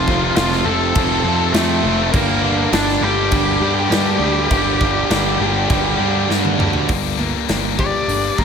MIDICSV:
0, 0, Header, 1, 7, 480
1, 0, Start_track
1, 0, Key_signature, -2, "minor"
1, 0, Tempo, 593472
1, 1732, Time_signature, 4, 2, 24, 8
1, 6830, End_track
2, 0, Start_track
2, 0, Title_t, "String section"
2, 0, Program_c, 0, 48
2, 0, Note_on_c, 0, 65, 81
2, 0, Note_on_c, 0, 69, 77
2, 0, Note_on_c, 0, 72, 73
2, 0, Note_on_c, 0, 81, 88
2, 1705, Note_off_c, 0, 72, 0
2, 1707, Note_off_c, 0, 81, 0
2, 1708, Note_off_c, 0, 69, 0
2, 1711, Note_off_c, 0, 65, 0
2, 1726, Note_on_c, 0, 70, 74
2, 1729, Note_on_c, 0, 81, 91
2, 1730, Note_on_c, 0, 67, 83
2, 1734, Note_on_c, 0, 74, 75
2, 5539, Note_off_c, 0, 70, 0
2, 5540, Note_off_c, 0, 81, 0
2, 5541, Note_off_c, 0, 67, 0
2, 5543, Note_off_c, 0, 74, 0
2, 6830, End_track
3, 0, Start_track
3, 0, Title_t, "Lead electric guitar"
3, 0, Program_c, 1, 29
3, 0, Note_on_c, 1, 65, 84
3, 0, Note_on_c, 1, 77, 110
3, 269, Note_off_c, 1, 65, 0
3, 288, Note_off_c, 1, 77, 0
3, 294, Note_on_c, 1, 65, 82
3, 297, Note_on_c, 1, 77, 101
3, 518, Note_off_c, 1, 65, 0
3, 526, Note_on_c, 1, 69, 85
3, 531, Note_on_c, 1, 81, 105
3, 544, Note_off_c, 1, 77, 0
3, 1216, Note_off_c, 1, 69, 0
3, 1236, Note_on_c, 1, 57, 76
3, 1242, Note_on_c, 1, 69, 81
3, 1273, Note_off_c, 1, 81, 0
3, 1692, Note_off_c, 1, 57, 0
3, 1720, Note_off_c, 1, 69, 0
3, 1720, Note_on_c, 1, 58, 81
3, 1723, Note_on_c, 1, 70, 82
3, 2173, Note_off_c, 1, 58, 0
3, 2173, Note_off_c, 1, 70, 0
3, 2214, Note_on_c, 1, 62, 83
3, 2217, Note_on_c, 1, 74, 91
3, 2436, Note_off_c, 1, 62, 0
3, 2454, Note_on_c, 1, 67, 77
3, 2459, Note_off_c, 1, 74, 0
3, 2463, Note_on_c, 1, 79, 98
3, 5062, Note_off_c, 1, 67, 0
3, 5066, Note_off_c, 1, 79, 0
3, 6309, Note_on_c, 1, 74, 101
3, 6781, Note_on_c, 1, 70, 86
3, 6802, Note_off_c, 1, 74, 0
3, 6830, Note_off_c, 1, 70, 0
3, 6830, End_track
4, 0, Start_track
4, 0, Title_t, "Steel-string acoustic guitar"
4, 0, Program_c, 2, 25
4, 6300, Note_on_c, 2, 67, 79
4, 6830, Note_off_c, 2, 67, 0
4, 6830, End_track
5, 0, Start_track
5, 0, Title_t, "Distorted electric guitar"
5, 0, Program_c, 3, 30
5, 55, Note_on_c, 3, 41, 82
5, 62, Note_on_c, 3, 48, 82
5, 68, Note_on_c, 3, 53, 80
5, 72, Note_on_c, 3, 57, 94
5, 76, Note_on_c, 3, 60, 85
5, 285, Note_off_c, 3, 41, 0
5, 288, Note_off_c, 3, 48, 0
5, 292, Note_off_c, 3, 53, 0
5, 294, Note_on_c, 3, 41, 100
5, 298, Note_on_c, 3, 48, 90
5, 301, Note_off_c, 3, 60, 0
5, 302, Note_on_c, 3, 53, 102
5, 303, Note_off_c, 3, 57, 0
5, 306, Note_on_c, 3, 57, 111
5, 311, Note_on_c, 3, 60, 106
5, 528, Note_off_c, 3, 41, 0
5, 536, Note_off_c, 3, 48, 0
5, 538, Note_on_c, 3, 41, 84
5, 540, Note_off_c, 3, 53, 0
5, 546, Note_on_c, 3, 48, 101
5, 547, Note_off_c, 3, 57, 0
5, 547, Note_off_c, 3, 60, 0
5, 550, Note_on_c, 3, 53, 101
5, 551, Note_on_c, 3, 57, 97
5, 557, Note_on_c, 3, 60, 105
5, 760, Note_off_c, 3, 41, 0
5, 767, Note_off_c, 3, 48, 0
5, 770, Note_on_c, 3, 41, 100
5, 777, Note_off_c, 3, 53, 0
5, 777, Note_on_c, 3, 48, 109
5, 780, Note_off_c, 3, 60, 0
5, 784, Note_off_c, 3, 57, 0
5, 786, Note_on_c, 3, 53, 96
5, 788, Note_on_c, 3, 57, 108
5, 790, Note_on_c, 3, 60, 121
5, 997, Note_off_c, 3, 41, 0
5, 1004, Note_off_c, 3, 48, 0
5, 1005, Note_off_c, 3, 53, 0
5, 1007, Note_on_c, 3, 41, 85
5, 1013, Note_on_c, 3, 48, 90
5, 1014, Note_off_c, 3, 60, 0
5, 1014, Note_on_c, 3, 53, 88
5, 1017, Note_off_c, 3, 57, 0
5, 1020, Note_on_c, 3, 57, 97
5, 1024, Note_on_c, 3, 60, 99
5, 1235, Note_off_c, 3, 41, 0
5, 1244, Note_off_c, 3, 48, 0
5, 1244, Note_on_c, 3, 41, 105
5, 1251, Note_off_c, 3, 53, 0
5, 1254, Note_on_c, 3, 48, 100
5, 1257, Note_off_c, 3, 60, 0
5, 1258, Note_off_c, 3, 57, 0
5, 1261, Note_on_c, 3, 53, 115
5, 1261, Note_on_c, 3, 57, 114
5, 1267, Note_on_c, 3, 60, 110
5, 1476, Note_off_c, 3, 41, 0
5, 1486, Note_on_c, 3, 41, 94
5, 1487, Note_off_c, 3, 48, 0
5, 1487, Note_off_c, 3, 53, 0
5, 1497, Note_on_c, 3, 48, 87
5, 1497, Note_on_c, 3, 53, 96
5, 1498, Note_off_c, 3, 60, 0
5, 1503, Note_off_c, 3, 57, 0
5, 1506, Note_on_c, 3, 57, 90
5, 1508, Note_on_c, 3, 60, 102
5, 1714, Note_off_c, 3, 41, 0
5, 1717, Note_on_c, 3, 43, 99
5, 1720, Note_off_c, 3, 48, 0
5, 1720, Note_off_c, 3, 53, 0
5, 1723, Note_on_c, 3, 50, 108
5, 1725, Note_off_c, 3, 60, 0
5, 1727, Note_on_c, 3, 55, 107
5, 1734, Note_off_c, 3, 57, 0
5, 1734, Note_on_c, 3, 62, 113
5, 1737, Note_on_c, 3, 58, 105
5, 1956, Note_off_c, 3, 43, 0
5, 1959, Note_on_c, 3, 43, 92
5, 1961, Note_off_c, 3, 50, 0
5, 1967, Note_off_c, 3, 55, 0
5, 1970, Note_on_c, 3, 55, 82
5, 1971, Note_on_c, 3, 50, 90
5, 1975, Note_off_c, 3, 58, 0
5, 1978, Note_on_c, 3, 58, 89
5, 1979, Note_off_c, 3, 62, 0
5, 1982, Note_on_c, 3, 62, 94
5, 2199, Note_off_c, 3, 50, 0
5, 2201, Note_off_c, 3, 43, 0
5, 2204, Note_on_c, 3, 43, 96
5, 2209, Note_on_c, 3, 50, 100
5, 2211, Note_off_c, 3, 55, 0
5, 2213, Note_off_c, 3, 58, 0
5, 2214, Note_on_c, 3, 55, 98
5, 2216, Note_on_c, 3, 58, 104
5, 2220, Note_off_c, 3, 62, 0
5, 2223, Note_on_c, 3, 62, 120
5, 2438, Note_off_c, 3, 50, 0
5, 2442, Note_off_c, 3, 43, 0
5, 2445, Note_on_c, 3, 43, 95
5, 2448, Note_on_c, 3, 50, 98
5, 2452, Note_off_c, 3, 55, 0
5, 2454, Note_off_c, 3, 58, 0
5, 2455, Note_on_c, 3, 55, 101
5, 2458, Note_on_c, 3, 58, 90
5, 2459, Note_off_c, 3, 62, 0
5, 2462, Note_on_c, 3, 62, 99
5, 2677, Note_off_c, 3, 43, 0
5, 2677, Note_off_c, 3, 50, 0
5, 2681, Note_on_c, 3, 43, 103
5, 2687, Note_on_c, 3, 50, 103
5, 2692, Note_off_c, 3, 55, 0
5, 2695, Note_off_c, 3, 58, 0
5, 2695, Note_on_c, 3, 55, 97
5, 2698, Note_off_c, 3, 62, 0
5, 2699, Note_on_c, 3, 58, 109
5, 2701, Note_on_c, 3, 62, 105
5, 2925, Note_off_c, 3, 50, 0
5, 2927, Note_off_c, 3, 43, 0
5, 2930, Note_on_c, 3, 43, 95
5, 2935, Note_on_c, 3, 50, 95
5, 2939, Note_off_c, 3, 55, 0
5, 2942, Note_off_c, 3, 58, 0
5, 2942, Note_on_c, 3, 55, 98
5, 2945, Note_on_c, 3, 58, 95
5, 2946, Note_off_c, 3, 62, 0
5, 2949, Note_on_c, 3, 62, 99
5, 3162, Note_off_c, 3, 43, 0
5, 3165, Note_on_c, 3, 43, 107
5, 3166, Note_off_c, 3, 50, 0
5, 3173, Note_off_c, 3, 55, 0
5, 3176, Note_on_c, 3, 50, 116
5, 3177, Note_off_c, 3, 58, 0
5, 3177, Note_on_c, 3, 55, 99
5, 3181, Note_on_c, 3, 58, 116
5, 3184, Note_off_c, 3, 62, 0
5, 3187, Note_on_c, 3, 62, 107
5, 3395, Note_off_c, 3, 43, 0
5, 3398, Note_off_c, 3, 50, 0
5, 3398, Note_on_c, 3, 43, 96
5, 3407, Note_on_c, 3, 50, 83
5, 3411, Note_off_c, 3, 55, 0
5, 3413, Note_off_c, 3, 58, 0
5, 3414, Note_on_c, 3, 55, 92
5, 3415, Note_off_c, 3, 62, 0
5, 3416, Note_on_c, 3, 58, 92
5, 3418, Note_on_c, 3, 62, 104
5, 3625, Note_off_c, 3, 43, 0
5, 3631, Note_off_c, 3, 50, 0
5, 3635, Note_on_c, 3, 43, 89
5, 3639, Note_off_c, 3, 55, 0
5, 3641, Note_on_c, 3, 50, 97
5, 3643, Note_off_c, 3, 58, 0
5, 3647, Note_off_c, 3, 62, 0
5, 3649, Note_on_c, 3, 55, 100
5, 3653, Note_on_c, 3, 58, 107
5, 3656, Note_on_c, 3, 62, 107
5, 3875, Note_off_c, 3, 43, 0
5, 3881, Note_off_c, 3, 50, 0
5, 3884, Note_on_c, 3, 43, 76
5, 3889, Note_off_c, 3, 55, 0
5, 3891, Note_on_c, 3, 50, 75
5, 3894, Note_off_c, 3, 58, 0
5, 3899, Note_on_c, 3, 55, 95
5, 3900, Note_off_c, 3, 62, 0
5, 3904, Note_on_c, 3, 58, 90
5, 3910, Note_on_c, 3, 62, 93
5, 4103, Note_off_c, 3, 43, 0
5, 4109, Note_off_c, 3, 50, 0
5, 4112, Note_on_c, 3, 43, 89
5, 4114, Note_off_c, 3, 55, 0
5, 4116, Note_off_c, 3, 58, 0
5, 4119, Note_on_c, 3, 50, 106
5, 4121, Note_off_c, 3, 62, 0
5, 4124, Note_on_c, 3, 55, 93
5, 4126, Note_on_c, 3, 58, 104
5, 4130, Note_on_c, 3, 62, 105
5, 4347, Note_off_c, 3, 43, 0
5, 4355, Note_off_c, 3, 50, 0
5, 4357, Note_on_c, 3, 43, 92
5, 4359, Note_off_c, 3, 58, 0
5, 4360, Note_off_c, 3, 55, 0
5, 4365, Note_on_c, 3, 50, 99
5, 4367, Note_off_c, 3, 62, 0
5, 4369, Note_on_c, 3, 55, 94
5, 4369, Note_on_c, 3, 58, 93
5, 4377, Note_on_c, 3, 62, 95
5, 4585, Note_off_c, 3, 43, 0
5, 4589, Note_off_c, 3, 50, 0
5, 4595, Note_off_c, 3, 55, 0
5, 4595, Note_on_c, 3, 43, 100
5, 4598, Note_on_c, 3, 50, 95
5, 4599, Note_off_c, 3, 62, 0
5, 4602, Note_off_c, 3, 58, 0
5, 4605, Note_on_c, 3, 55, 107
5, 4609, Note_on_c, 3, 62, 116
5, 4612, Note_on_c, 3, 58, 112
5, 4837, Note_off_c, 3, 43, 0
5, 4841, Note_off_c, 3, 50, 0
5, 4846, Note_off_c, 3, 55, 0
5, 4846, Note_off_c, 3, 58, 0
5, 4847, Note_on_c, 3, 43, 87
5, 4850, Note_on_c, 3, 50, 87
5, 4851, Note_off_c, 3, 62, 0
5, 4856, Note_on_c, 3, 55, 91
5, 4856, Note_on_c, 3, 58, 95
5, 4860, Note_on_c, 3, 62, 97
5, 5068, Note_off_c, 3, 43, 0
5, 5069, Note_off_c, 3, 50, 0
5, 5077, Note_off_c, 3, 55, 0
5, 5078, Note_on_c, 3, 43, 101
5, 5079, Note_on_c, 3, 50, 107
5, 5084, Note_off_c, 3, 58, 0
5, 5085, Note_off_c, 3, 62, 0
5, 5086, Note_on_c, 3, 55, 101
5, 5094, Note_on_c, 3, 58, 111
5, 5095, Note_on_c, 3, 62, 119
5, 5311, Note_off_c, 3, 43, 0
5, 5316, Note_off_c, 3, 50, 0
5, 5321, Note_on_c, 3, 43, 88
5, 5322, Note_off_c, 3, 55, 0
5, 5326, Note_on_c, 3, 50, 80
5, 5331, Note_off_c, 3, 58, 0
5, 5331, Note_on_c, 3, 55, 82
5, 5333, Note_off_c, 3, 62, 0
5, 5341, Note_on_c, 3, 58, 81
5, 5343, Note_on_c, 3, 62, 97
5, 5550, Note_off_c, 3, 50, 0
5, 5551, Note_off_c, 3, 43, 0
5, 5559, Note_off_c, 3, 55, 0
5, 5560, Note_on_c, 3, 50, 101
5, 5561, Note_off_c, 3, 58, 0
5, 5561, Note_on_c, 3, 43, 89
5, 5565, Note_off_c, 3, 62, 0
5, 5568, Note_on_c, 3, 55, 100
5, 5571, Note_on_c, 3, 58, 91
5, 5582, Note_on_c, 3, 62, 102
5, 5799, Note_off_c, 3, 43, 0
5, 5801, Note_off_c, 3, 50, 0
5, 5805, Note_off_c, 3, 55, 0
5, 5809, Note_on_c, 3, 43, 75
5, 5810, Note_off_c, 3, 58, 0
5, 5810, Note_on_c, 3, 50, 83
5, 5814, Note_off_c, 3, 62, 0
5, 5815, Note_on_c, 3, 55, 78
5, 5820, Note_on_c, 3, 58, 90
5, 5824, Note_on_c, 3, 62, 84
5, 6030, Note_off_c, 3, 43, 0
5, 6035, Note_off_c, 3, 50, 0
5, 6039, Note_on_c, 3, 43, 80
5, 6043, Note_off_c, 3, 55, 0
5, 6044, Note_off_c, 3, 58, 0
5, 6045, Note_on_c, 3, 50, 84
5, 6050, Note_off_c, 3, 62, 0
5, 6053, Note_on_c, 3, 55, 77
5, 6054, Note_on_c, 3, 58, 89
5, 6060, Note_on_c, 3, 62, 79
5, 6277, Note_off_c, 3, 43, 0
5, 6284, Note_off_c, 3, 50, 0
5, 6286, Note_on_c, 3, 43, 83
5, 6289, Note_off_c, 3, 55, 0
5, 6293, Note_on_c, 3, 50, 84
5, 6296, Note_off_c, 3, 58, 0
5, 6298, Note_off_c, 3, 62, 0
5, 6299, Note_on_c, 3, 55, 90
5, 6306, Note_on_c, 3, 58, 91
5, 6307, Note_on_c, 3, 62, 92
5, 6526, Note_off_c, 3, 43, 0
5, 6528, Note_off_c, 3, 50, 0
5, 6535, Note_off_c, 3, 55, 0
5, 6535, Note_off_c, 3, 58, 0
5, 6536, Note_on_c, 3, 43, 87
5, 6538, Note_on_c, 3, 50, 93
5, 6543, Note_off_c, 3, 62, 0
5, 6545, Note_on_c, 3, 55, 97
5, 6545, Note_on_c, 3, 58, 103
5, 6553, Note_on_c, 3, 62, 101
5, 6768, Note_off_c, 3, 43, 0
5, 6770, Note_off_c, 3, 50, 0
5, 6774, Note_off_c, 3, 55, 0
5, 6778, Note_off_c, 3, 58, 0
5, 6778, Note_on_c, 3, 43, 90
5, 6780, Note_on_c, 3, 50, 81
5, 6782, Note_off_c, 3, 62, 0
5, 6783, Note_on_c, 3, 55, 86
5, 6788, Note_on_c, 3, 58, 94
5, 6792, Note_on_c, 3, 62, 95
5, 6830, Note_off_c, 3, 43, 0
5, 6830, Note_off_c, 3, 50, 0
5, 6830, Note_off_c, 3, 55, 0
5, 6830, Note_off_c, 3, 58, 0
5, 6830, Note_off_c, 3, 62, 0
5, 6830, End_track
6, 0, Start_track
6, 0, Title_t, "Picked electric bass"
6, 0, Program_c, 4, 34
6, 0, Note_on_c, 4, 29, 95
6, 238, Note_off_c, 4, 29, 0
6, 295, Note_on_c, 4, 29, 88
6, 504, Note_off_c, 4, 29, 0
6, 526, Note_on_c, 4, 29, 90
6, 739, Note_off_c, 4, 29, 0
6, 773, Note_on_c, 4, 29, 94
6, 982, Note_off_c, 4, 29, 0
6, 1003, Note_on_c, 4, 41, 90
6, 1216, Note_off_c, 4, 41, 0
6, 1239, Note_on_c, 4, 41, 94
6, 1454, Note_off_c, 4, 41, 0
6, 1482, Note_on_c, 4, 29, 104
6, 1695, Note_off_c, 4, 29, 0
6, 1727, Note_on_c, 4, 31, 101
6, 2146, Note_off_c, 4, 31, 0
6, 2201, Note_on_c, 4, 31, 88
6, 2414, Note_off_c, 4, 31, 0
6, 2436, Note_on_c, 4, 31, 97
6, 2651, Note_off_c, 4, 31, 0
6, 2682, Note_on_c, 4, 31, 99
6, 2894, Note_off_c, 4, 31, 0
6, 2916, Note_on_c, 4, 43, 92
6, 3131, Note_off_c, 4, 43, 0
6, 3153, Note_on_c, 4, 43, 90
6, 3369, Note_off_c, 4, 43, 0
6, 3391, Note_on_c, 4, 38, 99
6, 3608, Note_off_c, 4, 38, 0
6, 3642, Note_on_c, 4, 31, 100
6, 4064, Note_off_c, 4, 31, 0
6, 4124, Note_on_c, 4, 31, 92
6, 4335, Note_off_c, 4, 31, 0
6, 4363, Note_on_c, 4, 31, 93
6, 4575, Note_off_c, 4, 31, 0
6, 4609, Note_on_c, 4, 31, 94
6, 4819, Note_off_c, 4, 31, 0
6, 4850, Note_on_c, 4, 43, 86
6, 5060, Note_off_c, 4, 43, 0
6, 5089, Note_on_c, 4, 43, 92
6, 5300, Note_off_c, 4, 43, 0
6, 5327, Note_on_c, 4, 38, 93
6, 5575, Note_on_c, 4, 31, 86
6, 5587, Note_off_c, 4, 38, 0
6, 5920, Note_off_c, 4, 31, 0
6, 6057, Note_on_c, 4, 31, 83
6, 6403, Note_off_c, 4, 31, 0
6, 6532, Note_on_c, 4, 31, 91
6, 6708, Note_off_c, 4, 31, 0
6, 6778, Note_on_c, 4, 31, 78
6, 6830, Note_off_c, 4, 31, 0
6, 6830, End_track
7, 0, Start_track
7, 0, Title_t, "Drums"
7, 62, Note_on_c, 9, 36, 84
7, 143, Note_off_c, 9, 36, 0
7, 293, Note_on_c, 9, 49, 60
7, 298, Note_on_c, 9, 38, 110
7, 374, Note_off_c, 9, 49, 0
7, 379, Note_off_c, 9, 38, 0
7, 421, Note_on_c, 9, 38, 34
7, 502, Note_off_c, 9, 38, 0
7, 770, Note_on_c, 9, 49, 68
7, 774, Note_on_c, 9, 36, 116
7, 851, Note_off_c, 9, 49, 0
7, 855, Note_off_c, 9, 36, 0
7, 1248, Note_on_c, 9, 49, 62
7, 1253, Note_on_c, 9, 38, 108
7, 1329, Note_off_c, 9, 49, 0
7, 1333, Note_off_c, 9, 38, 0
7, 1729, Note_on_c, 9, 36, 122
7, 1731, Note_on_c, 9, 49, 68
7, 1810, Note_off_c, 9, 36, 0
7, 1812, Note_off_c, 9, 49, 0
7, 2208, Note_on_c, 9, 49, 66
7, 2213, Note_on_c, 9, 38, 113
7, 2289, Note_off_c, 9, 49, 0
7, 2294, Note_off_c, 9, 38, 0
7, 2334, Note_on_c, 9, 38, 34
7, 2415, Note_off_c, 9, 38, 0
7, 2681, Note_on_c, 9, 49, 64
7, 2686, Note_on_c, 9, 36, 113
7, 2762, Note_off_c, 9, 49, 0
7, 2766, Note_off_c, 9, 36, 0
7, 3169, Note_on_c, 9, 49, 57
7, 3173, Note_on_c, 9, 38, 112
7, 3249, Note_off_c, 9, 49, 0
7, 3254, Note_off_c, 9, 38, 0
7, 3644, Note_on_c, 9, 49, 59
7, 3647, Note_on_c, 9, 36, 109
7, 3725, Note_off_c, 9, 49, 0
7, 3727, Note_off_c, 9, 36, 0
7, 3889, Note_on_c, 9, 36, 86
7, 3970, Note_off_c, 9, 36, 0
7, 4130, Note_on_c, 9, 49, 57
7, 4135, Note_on_c, 9, 38, 111
7, 4211, Note_off_c, 9, 49, 0
7, 4216, Note_off_c, 9, 38, 0
7, 4610, Note_on_c, 9, 36, 117
7, 4612, Note_on_c, 9, 49, 65
7, 4691, Note_off_c, 9, 36, 0
7, 4693, Note_off_c, 9, 49, 0
7, 5100, Note_on_c, 9, 38, 64
7, 5181, Note_off_c, 9, 38, 0
7, 5216, Note_on_c, 9, 48, 69
7, 5297, Note_off_c, 9, 48, 0
7, 5337, Note_on_c, 9, 45, 90
7, 5418, Note_off_c, 9, 45, 0
7, 5446, Note_on_c, 9, 43, 95
7, 5527, Note_off_c, 9, 43, 0
7, 5569, Note_on_c, 9, 46, 60
7, 5574, Note_on_c, 9, 36, 109
7, 5650, Note_off_c, 9, 46, 0
7, 5655, Note_off_c, 9, 36, 0
7, 6057, Note_on_c, 9, 46, 53
7, 6061, Note_on_c, 9, 38, 104
7, 6137, Note_off_c, 9, 46, 0
7, 6142, Note_off_c, 9, 38, 0
7, 6299, Note_on_c, 9, 36, 89
7, 6380, Note_off_c, 9, 36, 0
7, 6545, Note_on_c, 9, 46, 52
7, 6626, Note_off_c, 9, 46, 0
7, 6781, Note_on_c, 9, 36, 83
7, 6830, Note_off_c, 9, 36, 0
7, 6830, End_track
0, 0, End_of_file